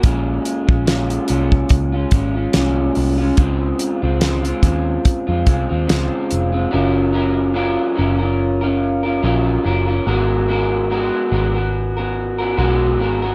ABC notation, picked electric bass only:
X:1
M:4/4
L:1/16
Q:"Swing 16ths" 1/4=72
K:Gblyd
V:1 name="Picked electric bass" clef=bass
B,,,2 z B,,,3 C,,2 D,,2 A,,,2 C,,2 C,,2 | D,,2 z D,,3 E,,2 z F,, C,, E,, D,, z F,,,2 | G,,,4- G,,, z G,,,6 B,,,2 G,,,2 | A,,,4- A,,, z A,,,6 _C,,2 A,,,2 |]